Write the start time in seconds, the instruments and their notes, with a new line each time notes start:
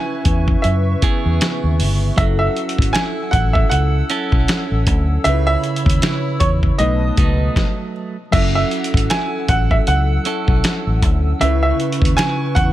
Already playing: synth keys C#3 C#4 E4 B4, clean electric guitar C#3 C#4 E4, analog synth pad B4 E5 C#6, grand piano G#5
0.25 fingered electric bass E2, kick, closed hi-hat
0.48 kick
0.62 fingered electric bass F#2, grand piano E5, closed hi-hat
1.02 clean electric guitar B3 E4 G#4, kick, closed hi-hat
1.25 fingered electric bass E2
1.41 snare, closed hi-hat
1.63 fingered electric bass D#2
1.80 fingered electric bass G1, open hi-hat
2.16 fingered electric bass F#1, synth keys F#3 C#4 E4, clean electric guitar F#3, analog synth pad A4 F#5 E6, grand piano E5, kick, closed hi-hat
2.21 synth keys A4
2.39 grand piano E5
2.56 closed hi-hat
2.69 closed hi-hat
2.78 fingered electric bass G#1, kick, closed hi-hat
2.93 clean electric guitar E4, grand piano G#5, snare, closed hi-hat
3.31 fingered electric bass A1, grand piano F#5, kick, closed hi-hat
3.53 grand piano E5, kick
3.69 fingered electric bass C#2, grand piano F#5, closed hi-hat
4.10 clean electric guitar C#4 E4 A4, closed hi-hat
4.32 fingered electric bass B1, kick
4.48 snare, closed hi-hat
4.71 fingered electric bass A1
4.87 fingered electric bass D2, kick, closed hi-hat
5.23 fingered electric bass C#2, synth keys C#3 C#4 D#4, clean electric guitar C#3, analog synth pad C#5 B5 E6, grand piano E5, closed hi-hat
5.29 synth keys B4
5.33 synth keys E4
5.47 grand piano E5
5.64 closed hi-hat
5.76 closed hi-hat
5.86 fingered electric bass D#2, kick, closed hi-hat
6.02 clean electric guitar E4, snare, closed hi-hat
6.40 fingered electric bass E2, grand piano C#5, kick, closed hi-hat
6.63 kick
6.78 fingered electric bass B1, synth keys B2 A3 D#4 B4, clean electric guitar B2, analog synth pad B4 A5 D#6, grand piano D#5, closed hi-hat
7.17 fingered electric bass C#2, clean electric guitar F#3 A3 D#4, kick, closed hi-hat
7.56 kick, snare
8.31 fingered electric bass F#1, synth keys F#3 C#4 E4, clean electric guitar F#3, analog synth pad A4 F#5 E6, grand piano E5, kick, closed hi-hat, crash
8.36 synth keys A4
8.55 grand piano E5
8.71 closed hi-hat
8.84 closed hi-hat
8.94 fingered electric bass G#1, kick, closed hi-hat
9.10 clean electric guitar E4, grand piano G#5, snare, closed hi-hat
9.48 fingered electric bass A1, grand piano F#5, kick, closed hi-hat
9.71 grand piano E5, kick
9.87 fingered electric bass C#2, grand piano F#5, closed hi-hat
10.25 clean electric guitar C#4 E4 A4, closed hi-hat
10.48 fingered electric bass B1, kick
10.64 snare, closed hi-hat
10.87 fingered electric bass A1
11.02 fingered electric bass D2, kick, closed hi-hat
11.39 fingered electric bass C#2, synth keys C#3 C#4 E4, clean electric guitar C#3, analog synth pad E4 B4 C#6, grand piano E5, closed hi-hat
11.44 synth keys B4
11.63 grand piano E5
11.80 closed hi-hat
11.92 closed hi-hat
12.02 fingered electric bass D#2, kick, closed hi-hat
12.17 clean electric guitar E4, grand piano G#5, snare, closed hi-hat
12.55 fingered electric bass E2, grand piano F#5, kick, closed hi-hat